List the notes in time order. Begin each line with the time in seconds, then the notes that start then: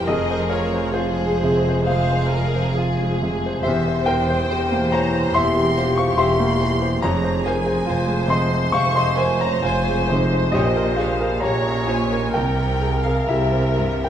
0.06 F1 F2 G#4 A#4 D#5
0.31 C5
0.50 F4 A#4 C#5
0.74 C5
0.93 F4 G#4 C5
1.18 G#3
1.39 G#4
1.44 C3
1.69 C5
1.86 G#4 C5 F5
1.90 C3
2.13 C5
2.30 A#4
2.36 A#4
2.56 C5
2.74 F4 G#4
3.00 G#3
3.22 C3
3.46 C5
3.62 E1 E2 G4 C5 E5
3.67 E2
3.88 C5
4.06 A#4 C5 G5
4.10 A#4
4.30 C5
4.48 E1 E2 C5
4.52 G4
4.72 A#3
4.92 E3 C5 C#5 A#5
5.14 C5
5.32 E1 E2 G4 C5 E5 C6
5.37 E2
5.57 G4
5.76 F4 C5
5.96 C5 F5 C#6
6.16 E1 E2 G4 C5 E5 C6
6.40 A#3
6.60 E3 C5
6.82 C5
7.02 F1 F2 G#4 C5 C#5 A#5
7.24 C5
7.45 A#4 C5 G#5
7.67 C5
7.86 F1 F2 F4 C5
8.07 G#3
8.28 C3 C5 D#5 C6
8.52 C5
8.72 F1 F2 C3 C5 F5 C#6
8.94 C5 D#5 C6
9.16 A#4 C5 G#5
9.41 C5 C#5 A#5
9.62 F1 F2 F4 C5 G#5
9.88 G#3
10.07 D#4 C5
10.11 C3 C5
10.33 C5
10.52 A#1 A#2 G4 C#5 D#5
10.56 D#5
10.76 A#4
10.96 G#4 C#5 F5
11.20 A#4
11.40 A#1 A#2 G4 C#5 A#5
11.46 C#5
11.66 C#4
11.87 A#2 C5 C#5 G#5
12.12 A#4
12.34 C2 C3 A#4 G5
12.59 A#4
12.81 G#4 A#4
13.03 G#4 A#4 F5
13.27 C2 C3 E4 G4 A#4 E5
13.52 C4
13.77 G2 A#4
14.04 A#4 G5